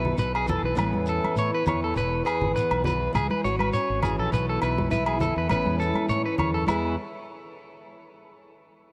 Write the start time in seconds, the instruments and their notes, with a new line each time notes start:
Already playing: fingered electric bass B1, steel-string acoustic guitar B2 E4, clean electric guitar B4
0.05 low conga
0.18 fingered electric bass B1, clean electric guitar B4, muted steel-string acoustic guitar stroke, shekere
0.35 clean electric guitar G#4, low agogo
0.46 steel-string acoustic guitar E3, clean electric guitar A4, low conga, shekere
0.62 fingered electric bass B1, clean electric guitar B4
0.75 fingered electric bass A1, steel-string acoustic guitar A2 E3 B3 C#4, clean electric guitar B4, muted steel-string acoustic guitar stroke, high conga, low agogo, shekere
0.93 fingered electric bass E2, high conga
1.06 steel-string acoustic guitar E4, clean electric guitar A4, shekere
1.24 high conga, low agogo
1.35 fingered electric bass A2, clean electric guitar C#5, shekere
1.54 clean electric guitar B4
1.66 fingered electric bass E2, steel-string acoustic guitar E3, clean electric guitar C#5, low conga, low agogo, shekere
1.84 clean electric guitar A4
1.94 fingered electric bass E1, steel-string acoustic guitar E2, clean electric guitar B4, shekere
2.25 clean electric guitar G#4, steel-string acoustic guitar B4, low agogo, shekere
2.41 fingered electric bass G#1, low conga
2.56 steel-string acoustic guitar B3, clean electric guitar B4, shekere
2.71 fingered electric bass B1, low agogo
2.84 steel-string acoustic guitar E3, clean electric guitar B4, low conga, shekere
3.13 fingered electric bass C#2, clean electric guitar G#4, muted steel-string acoustic guitar stroke, high conga, low agogo, shekere
3.30 clean electric guitar B4, high conga
3.44 fingered electric bass G#1, steel-string acoustic guitar F#4, clean electric guitar C#5, shekere
3.59 clean electric guitar B4, high conga, low agogo
3.73 steel-string acoustic guitar C#4, clean electric guitar C#5, shekere
3.89 fingered electric bass G#1
4.02 steel-string acoustic guitar E3, clean electric guitar G#4, low conga, low agogo, shekere
4.19 fingered electric bass A#1, clean electric guitar A4
4.32 fingered electric bass B1, steel-string acoustic guitar B2, clean electric guitar B4, shekere
4.49 clean electric guitar A4
4.62 fingered electric bass B1, steel-string acoustic guitar E4, clean electric guitar B4, low agogo, shekere
4.78 high conga, low conga
4.91 fingered electric bass B1, steel-string acoustic guitar E4, clean electric guitar B4, shekere
5.06 clean electric guitar G#4, low agogo
5.19 steel-string acoustic guitar E3, clean electric guitar A4, low conga, shekere
5.36 fingered electric bass E2, clean electric guitar B4
5.49 fingered electric bass A1, steel-string acoustic guitar A2 E3 B3 C#4 E4, clean electric guitar B4, high conga, low agogo, shekere
5.65 fingered electric bass E2, high conga
5.79 steel-string acoustic guitar E4, clean electric guitar A4, shekere
5.94 high conga, low agogo
6.09 steel-string acoustic guitar G#2, fingered electric bass A2, clean electric guitar C#5, shekere
6.26 clean electric guitar B4
6.38 fingered electric bass E2, steel-string acoustic guitar F#2, clean electric guitar C#5, low conga, low agogo
6.54 clean electric guitar A4
6.66 steel-string acoustic guitar E2 E3 G#3 B3 G#4, fingered electric bass E2, clean electric guitar E4, high conga, low agogo, shekere